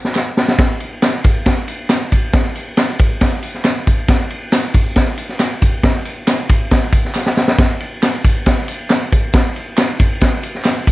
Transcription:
0.05 snare
0.15 snare, clap, tambourine
0.37 snare, tambourine
0.48 snare
0.59 kick, snare, ride
0.80 ride, tambourine
1.02 snare, clap, ride, tambourine
1.24 kick, ride, tambourine
1.46 kick, snare, ride, tambourine
1.68 ride, tambourine
1.89 snare, clap, ride, tambourine
2.12 kick, ride, tambourine
2.33 kick, snare, ride
2.55 ride, tambourine
2.77 snare, clap, ride, tambourine
2.99 kick, ride, tambourine
3.21 kick, snare, ride, tambourine
3.42 ride, tambourine
3.54 snare
3.64 snare, clap, ride, tambourine
3.87 kick, ride, tambourine
4.08 kick, snare, ride, tambourine
4.30 ride
4.52 snare, clap, ride, tambourine
4.74 kick, ride, tambourine
4.96 kick, snare, ride, tambourine
5.17 ride, tambourine
5.29 snare
5.39 snare, clap, ride, tambourine
5.62 kick, ride, tambourine
5.83 kick, snare, ride
6.05 ride, tambourine
6.27 snare, clap, ride, tambourine
6.49 kick, ride, tambourine
6.71 kick, snare, ride, tambourine
6.93 kick, ride, tambourine
7.05 snare
7.14 snare, clap, tambourine
7.26 snare
7.37 snare, tambourine
7.48 snare
7.59 kick, snare, ride
7.80 ride
8.02 snare, clap, ride, tambourine
8.24 kick, ride, tambourine
8.46 kick, snare, ride, tambourine
8.68 ride, tambourine
8.90 snare, clap, ride, tambourine
9.12 kick, ride, tambourine
9.33 kick, snare, ride, tambourine
9.56 ride
9.77 snare, clap, ride, tambourine
9.99 kick, ride, tambourine
10.21 kick, snare, ride, tambourine
10.43 ride, tambourine
10.55 snare
10.64 snare, clap, ride, tambourine
10.87 kick, ride, tambourine

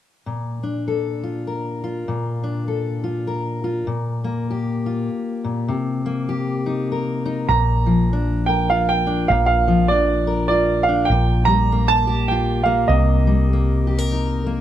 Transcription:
0.26 A#2
0.63 D4
0.88 A4
1.23 F4
1.47 A#4
1.84 F4
2.08 A#2
2.44 D4
2.68 A4
3.04 F4
3.27 A#4
3.64 F4
3.87 A#2
4.24 A#3
4.50 G4
4.86 F4
5.44 A#2
5.68 C3
6.06 A#3
6.29 G4
6.66 D#4
6.92 A#4
7.26 D#4
7.49 A#1 A#2 A#5
7.86 F3
8.13 D4
8.46 A#4 G5
8.70 F4 F5
8.89 G5
9.07 D4
9.28 A#1 A#2 F5
9.46 F5
9.68 F3
9.88 D4 D5
10.27 A#4
10.48 F4 D5
10.83 F5
10.89 D4
11.05 G5
11.10 A#1 A#2
11.45 G3 A#5
11.72 A#3
11.88 A5
12.07 G4
12.28 F4 G5
12.63 A#3 F5
12.88 C2 C3 D#5
13.27 G3
13.53 A#3
13.87 G4
13.98 A#4
14.12 D#4
14.46 A#3

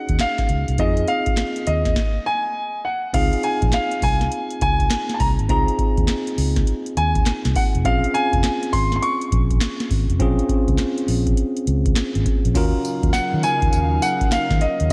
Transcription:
Already playing: C#4 D#4 F#4 G#4 F#5
0.09 D#2, kick, closed hi-hat
0.19 F5, snare, clap, closed hi-hat
0.38 kick, snare, closed hi-hat
0.49 C#2, closed hi-hat
0.68 C2, closed hi-hat
0.78 F2 C4 D#4 F4 G#4 D#5, kick, closed hi-hat
0.97 closed hi-hat
1.08 F5, closed hi-hat
1.26 muted fingered electric bass stroke, kick, closed hi-hat
1.37 snare, clap, closed hi-hat
1.56 closed hi-hat
1.67 D#2 D#5, closed hi-hat
1.85 kick, snare, closed hi-hat
1.96 kick, snare
2.26 G#5
2.85 F#5
3.14 C#2 C4 D#4 F4 G#4 F5, kick, closed hi-hat, crash
3.33 closed hi-hat
3.43 G#5, closed hi-hat
3.62 A#1, kick, closed hi-hat
3.72 F5, snare, clap, closed hi-hat
3.91 closed hi-hat
4.02 C2 G#5, kick, open hi-hat
4.21 snare, closed hi-hat
4.32 closed hi-hat
4.50 closed hi-hat
4.61 C#2 G#5, kick, closed hi-hat
4.80 kick, closed hi-hat
4.90 snare, clap, closed hi-hat
5.09 snare, closed hi-hat
5.14 A5
5.20 C2 A#5, kick, open hi-hat
5.39 G#1, closed hi-hat
5.49 C#2 C4 D#4 F4 G#4 A#5, kick, closed hi-hat
5.68 closed hi-hat
5.79 kick, closed hi-hat
5.97 D#2, kick, closed hi-hat
6.08 snare, clap, closed hi-hat
6.27 closed hi-hat
6.38 C#2, open hi-hat
6.56 kick, snare, closed hi-hat
6.67 closed hi-hat
6.86 closed hi-hat
6.97 D#2 G#5, closed hi-hat
7.15 kick, closed hi-hat
7.26 muted fingered electric bass stroke, snare, clap, closed hi-hat
7.45 C2, snare, closed hi-hat
7.56 F#5, kick, open hi-hat
7.75 F1, closed hi-hat
7.85 A#1 C4 C#4 F4 G#4 F5, kick, closed hi-hat
8.04 closed hi-hat
8.14 G#5, closed hi-hat
8.33 F1, kick, closed hi-hat
8.44 snare, clap, closed hi-hat
8.63 closed hi-hat
8.73 G#1 C6, kick, open hi-hat
8.92 snare, closed hi-hat
8.96 C6
9.02 C#6, closed hi-hat
9.21 closed hi-hat
9.32 A#1, kick, closed hi-hat
9.51 kick, closed hi-hat
9.61 snare, clap, closed hi-hat
9.80 snare, closed hi-hat
9.91 G#1, kick, open hi-hat
10.10 F1, closed hi-hat
10.19 A#1 C4 C#4 F4 G#4, kick, closed hi-hat
10.39 closed hi-hat
10.49 kick, closed hi-hat
10.68 C#2, kick, closed hi-hat
10.78 snare, clap, closed hi-hat
10.98 closed hi-hat
11.08 A#1, open hi-hat
11.27 kick, closed hi-hat
11.37 closed hi-hat
11.57 closed hi-hat
11.67 C#2, closed hi-hat
11.86 kick, closed hi-hat
11.96 snare, clap, closed hi-hat
12.15 G#1, closed hi-hat
12.26 kick, closed hi-hat
12.45 A#1, closed hi-hat
12.55 D#2 C#3 F#3 C#4 D#4 F4 F#4 A#4 F5, kick, closed hi-hat, crash, tambourine
12.85 closed hi-hat, tambourine
13.03 D#2, kick, closed hi-hat
13.13 F#5, snare, clap, closed hi-hat, tambourine
13.34 D#3
13.43 G#5, closed hi-hat, tambourine
13.62 D#2, kick, closed hi-hat
13.73 D#2, closed hi-hat, tambourine
14.02 F#5, closed hi-hat, tambourine
14.21 kick, closed hi-hat
14.32 F5, snare, clap, closed hi-hat, tambourine
14.50 D#3, kick, snare
14.61 D#5, closed hi-hat
14.80 D#2, closed hi-hat

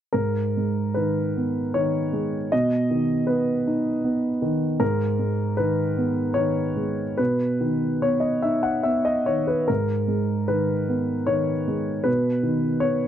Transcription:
0.13 G#2 A#4
0.57 G#3
0.94 D#3 B4
1.37 B3
1.74 D#3 C#5
2.13 G#3
2.52 B2 D#5
2.91 D#3
3.27 B3 B4
3.67 D#4
4.04 B3
4.42 D#3
4.80 G#2 A#4
5.19 G#3
5.57 D#3 B4
5.97 B3
6.34 D#3 C#5
6.76 G#3
7.17 B2 B4
7.61 D#3
8.02 B3 C#5
8.20 D#5
8.42 D#4 E5
8.63 F#5
8.83 B3 E5
9.05 D#5
9.26 D#3 C#5
9.47 B4
9.68 G#2 A#4
10.08 G#3
10.48 D#3 B4
10.88 B3
11.27 D#3 C#5
11.68 G#3
12.04 B2 B4
12.43 D#3
12.80 B3 C#5

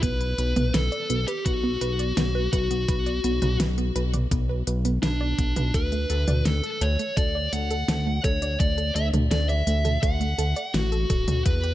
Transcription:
0.03 B1 B3 B4, kick, closed hi-hat
0.21 B4, closed hi-hat
0.38 B1 B4, closed hi-hat
0.56 B1 B3, closed hi-hat, mid tom
0.74 B1 A4 B4, snare, closed hi-hat
0.92 D5, closed hi-hat
1.10 B1 B3, closed hi-hat
1.28 G4 B4, closed hi-hat
1.46 B1 F#4 B4, kick, closed hi-hat
1.64 B3
1.81 B1 B4, closed hi-hat
1.99 D5, closed hi-hat
2.17 B1 B3, snare, closed hi-hat
2.35 B4
2.53 B1 F#4 B4, kick, closed hi-hat
2.71 B1 B3, closed hi-hat
2.88 B1 B4, kick, closed hi-hat
3.06 D5, closed hi-hat
3.24 B1 B3, closed hi-hat
3.42 B1 B4, closed hi-hat, mid tom
3.60 B1 B4, snare, closed hi-hat
3.78 B3, closed hi-hat
3.96 B1 B4, closed hi-hat
4.14 D5, closed hi-hat, mid tom
4.31 B1 B3, kick, closed hi-hat
4.49 B4
4.67 B1 B4, closed hi-hat
4.85 B3, closed hi-hat
5.03 B1 D4 B4, snare, closed hi-hat
5.21 D5
5.39 B1 B3, kick, closed hi-hat
5.56 B1 B4, closed hi-hat, mid tom
5.74 D2 A4 B4, kick, closed hi-hat
5.92 A3, closed hi-hat
6.10 D2 A4, closed hi-hat
6.28 D2 D5, closed hi-hat, mid tom
6.46 D2 A3 A4, snare, closed hi-hat
6.63 A4, closed hi-hat
6.81 D2 A4 C#5, closed hi-hat
6.99 A3, closed hi-hat
7.17 D2 A4 D5, kick, closed hi-hat
7.35 D5
7.53 D2 A3 F#5, closed hi-hat
7.71 A4, closed hi-hat
7.88 D2 A4, snare, closed hi-hat
8.07 A3
8.24 D2 A4 C#5, kick, closed hi-hat
8.42 D2 D5, closed hi-hat
8.60 D2 A3 D5, kick, closed hi-hat
8.78 A4, closed hi-hat
8.95 D2 A4 E5, closed hi-hat
9.13 D2 A3, closed hi-hat, mid tom
9.31 D2 A4 D5, snare, closed hi-hat
9.49 D5 E5, closed hi-hat
9.67 D2 A3, closed hi-hat
9.85 A4, closed hi-hat, mid tom
10.03 D2 A4 F#5, kick, closed hi-hat
10.21 A3, closed hi-hat
10.38 D2 A4, closed hi-hat
10.56 D5, closed hi-hat
10.74 A1 A3 F#4, snare, closed hi-hat
10.92 A4, closed hi-hat
11.10 D1 A4, kick, closed hi-hat
11.28 D2 A3, closed hi-hat, mid tom
11.46 E2 B3 B4, kick, closed hi-hat
11.63 G4, closed hi-hat

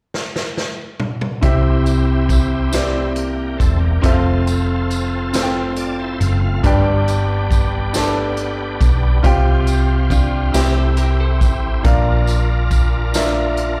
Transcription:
0.14 snare
0.36 snare
0.57 snare
1.00 mid tom
1.21 mid tom
1.41 C2 C3 C4 E4 G4 C5 E5, kick, closed hi-hat
1.86 closed hi-hat, tambourine
2.29 kick, closed hi-hat, tambourine
2.72 C4 E4 G4 C5 D5, snare, closed hi-hat, tambourine
3.15 A#3 G4, closed hi-hat
3.58 E1 C4 A4, kick, closed hi-hat, tambourine
3.79 A#3 G4
4.01 F1 C4 F4 G#4 A4 C5, kick, closed hi-hat
4.05 A4 E5
4.12 F5
4.47 closed hi-hat, tambourine
4.90 closed hi-hat, tambourine
5.33 C4 F4 A4 C5 F5, snare, closed hi-hat, tambourine
5.43 G5
5.76 F4 D5 A5, closed hi-hat
5.99 E4 C5
6.20 F#1 C4 A4 F5, closed hi-hat, tambourine
6.44 A3 F4
6.63 G1 G2 A3 D4 G4 B4 D5 G5, kick, closed hi-hat
6.71 B3
7.08 closed hi-hat, tambourine
7.51 kick, closed hi-hat, tambourine
7.93 D4 G4 A4 D5 A5, snare, closed hi-hat, tambourine
8.01 B4
8.37 closed hi-hat
8.81 B1, kick, closed hi-hat, tambourine
9.23 C2 C3 C4 F4 G4 C5 F5 G5, kick, closed hi-hat
9.67 closed hi-hat, tambourine
10.10 D4 F4, kick, closed hi-hat, tambourine
10.52 C2 C3 C4 E4 G4 C5 E5, snare, closed hi-hat, tambourine
10.57 G5
10.76 A4
10.97 G4 A#4, closed hi-hat
11.20 A4 C5
11.41 A1, kick, closed hi-hat, tambourine
11.83 A#1 A#2 D4 F4 A4 A#4 D5 F5, kick, closed hi-hat
11.91 A#4
12.27 closed hi-hat, tambourine
12.71 kick, closed hi-hat, tambourine
13.14 D4 F4 A#4 D5 E5, snare, closed hi-hat, tambourine
13.57 closed hi-hat

